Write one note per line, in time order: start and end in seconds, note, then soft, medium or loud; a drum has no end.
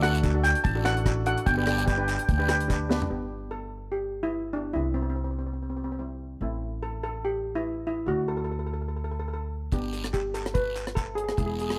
0.00 0.52 D2 loud
0.00 0.15 D4 medium
0.00 0.16 F#4 medium
0.00 0.16 A4 medium
0.00 0.41 F#5 loud
0.00 cross-stick medium
0.00 closed hi-hat medium
0.15 closed hi-hat medium
0.23 0.30 D4 medium
0.23 0.30 F#4 medium
0.23 0.30 A4 medium
0.23 kick medium
0.23 closed hi-hat medium
0.23 short guiro medium
0.34 0.59 D4 medium
0.34 0.59 F#4 medium
0.34 0.59 A4 medium
0.44 0.63 G5 loud
0.44 closed hi-hat medium
0.44 short guiro medium
0.55 closed hi-hat medium
0.64 1.34 A1 medium
0.64 0.85 A5 medium
0.64 kick loud
0.64 closed hi-hat medium
0.64 long guiro medium
0.75 0.81 D4 medium
0.75 0.81 F#4 medium
0.75 0.81 A4 medium
0.84 0.97 D4 medium
0.84 0.98 F#4 medium
0.84 0.98 A4 medium
0.84 1.25 F#5 medium
0.84 cross-stick medium
0.84 closed hi-hat medium
0.84 short guiro medium
0.97 closed hi-hat medium
1.05 1.18 D4 medium
1.05 1.18 F#4 medium
1.05 1.18 A4 medium
1.05 kick medium
1.05 cross-stick medium
1.05 closed hi-hat medium
1.05 short guiro medium
1.26 1.45 D4 medium
1.26 1.45 F#4 medium
1.26 1.45 A4 medium
1.26 1.47 F#5 loud
1.26 closed hi-hat medium
1.37 closed hi-hat medium
1.46 2.16 G1 loud
1.46 1.54 G5 medium
1.46 kick loud
1.46 closed hi-hat medium
1.46 long guiro medium
1.55 1.63 D4 medium
1.55 1.63 G4 medium
1.55 1.63 B4 medium
1.55 1.61 G5 medium
1.63 1.79 D4 medium
1.63 1.80 G4 medium
1.63 1.80 D5 medium
1.63 1.69 G5 medium
1.63 cross-stick medium
1.63 closed hi-hat medium
1.70 1.77 G5 medium
1.78 1.84 G5 medium
1.78 closed hi-hat medium
1.85 1.94 D4 medium
1.85 1.94 G4 medium
1.85 1.94 B4 medium
1.85 1.91 G5 medium
1.85 kick medium
1.85 closed hi-hat medium
1.85 short guiro medium
1.92 1.99 G5 medium
1.97 2.22 D4 medium
1.97 2.22 G4 medium
1.97 2.22 B4 medium
1.97 2.06 G5 medium
2.08 2.14 G5 medium
2.08 closed hi-hat medium
2.08 short guiro medium
2.15 2.21 G5 medium
2.19 2.28 G5 medium
2.19 closed hi-hat medium
2.28 2.98 D2 medium
2.28 2.36 G5 soft
2.28 kick medium
2.28 closed hi-hat medium
2.28 long guiro medium
2.38 2.45 D4 medium
2.38 2.45 G4 medium
2.38 2.45 B4 medium
2.38 2.42 G5 medium
2.43 2.49 G5 medium
2.48 2.61 D4 medium
2.48 2.62 G4 medium
2.48 2.62 B4 medium
2.48 2.58 G5 medium
2.48 cross-stick medium
2.48 closed hi-hat medium
2.48 short guiro medium
2.60 closed hi-hat medium
2.68 2.82 D4 medium
2.68 2.82 G4 medium
2.68 2.82 B4 medium
2.68 kick medium
2.68 closed hi-hat medium
2.68 short guiro medium
2.89 3.09 D4 medium
2.89 3.08 G4 medium
2.89 3.09 B4 medium
2.89 snare medium
3.02 floor tom medium
3.10 4.72 G1 medium
3.10 4.52 B3 medium
3.10 4.52 D4 medium
3.10 4.52 G4 medium
3.51 3.90 A4 medium
3.92 4.25 G4 medium
4.23 4.55 E4 medium
4.53 4.76 B3 soft
4.53 4.75 D4 medium
4.53 4.76 D4 soft
4.53 4.76 G4 soft
4.73 6.38 C2 medium
4.73 5.97 G3 soft
4.73 5.97 C4 soft
4.73 4.94 E4 medium
4.73 5.98 E4 medium
4.94 5.01 C4 medium
5.02 5.08 C4 soft
5.10 5.15 C4 medium
5.16 5.23 C4 soft
5.24 5.30 C4 soft
5.31 5.38 C4 soft
5.39 5.45 C4 soft
5.47 5.52 C4 soft
5.53 5.61 C4 soft
5.62 5.68 C4 soft
5.70 5.75 C4 soft
5.77 5.83 C4 soft
5.84 5.91 C4 soft
5.92 5.98 C4 soft
5.99 6.41 G3 soft
5.99 6.08 C4 soft
5.99 6.41 C4 soft
5.99 6.41 E4 soft
6.41 8.03 A1 medium
6.41 8.03 A3 medium
6.41 8.04 C4 medium
6.41 8.04 E4 medium
6.83 7.02 A4 medium
7.04 7.25 A4 medium
7.25 7.57 G4 medium
7.55 7.84 E4 medium
7.87 8.06 E4 medium
8.06 9.69 D2 medium
8.06 9.68 A3 medium
8.06 9.69 D4 soft
8.06 9.69 F#4 medium
8.06 8.27 F#4 medium
8.28 8.35 A4 medium
8.37 8.43 A4 medium
8.44 8.50 A4 medium
8.52 8.58 A4 soft
8.59 8.65 A4 soft
8.67 8.72 A4 soft
8.73 8.80 A4 medium
8.82 8.87 A4 soft
8.88 8.95 A4 soft
8.96 9.03 A4 soft
9.04 9.10 A4 medium
9.11 9.18 A4 soft
9.20 9.26 A4 medium
9.28 9.32 A4 soft
9.33 9.40 A4 medium
9.72 11.34 G1 medium
9.72 11.35 B3 medium
9.72 11.35 D4 medium
9.72 11.35 G4 medium
9.72 kick medium
9.72 closed hi-hat soft
9.72 long guiro medium
9.93 closed hi-hat medium
10.04 cross-stick medium
10.04 closed hi-hat medium
10.13 10.33 G4 medium
10.13 kick medium
10.13 closed hi-hat medium
10.13 short guiro medium
10.34 10.55 A4 medium
10.34 closed hi-hat medium
10.34 short guiro medium
10.46 cross-stick medium
10.46 closed hi-hat medium
10.54 10.97 B4 medium
10.54 kick medium
10.54 closed hi-hat medium
10.54 long guiro medium
10.76 closed hi-hat medium
10.76 short guiro medium
10.87 cross-stick medium
10.87 closed hi-hat soft
10.95 11.15 A4 medium
10.95 kick medium
10.95 closed hi-hat soft
10.95 short guiro medium
11.15 11.22 G#4 medium
11.15 closed hi-hat medium
11.24 11.30 G#4 soft
11.29 11.38 G#4 soft
11.29 cross-stick medium
11.29 closed hi-hat soft
11.37 11.79 E1 medium
11.37 11.79 B3 medium
11.37 11.79 E4 soft
11.37 11.79 G#4 medium
11.37 11.45 G#4 soft
11.37 kick medium
11.37 closed hi-hat soft
11.37 long guiro medium
11.46 11.52 G#4 medium
11.53 11.60 G#4 soft
11.59 11.68 G#4 medium
11.59 closed hi-hat medium
11.69 11.75 G#4 soft
11.69 cross-stick medium
11.69 closed hi-hat soft